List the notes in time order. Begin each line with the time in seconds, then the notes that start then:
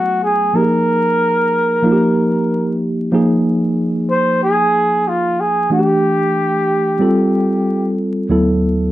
Already playing: F#3 A3 B3 E4 F#4
0.24 G#4
0.53 F3 A#3 D#4 G4 A#4
0.62 G#4
1.82 F3 A#3 D#4 F4
1.92 G4
3.12 F3 A#3 D#4 G#4
4.11 C5
4.44 G#4
5.08 F4
5.40 G#4
5.70 E3 A3 D4 F#4 G4
5.79 G4
6.99 G3 C4 F4 A4
8.29 D2 F#3 B3 E4 A4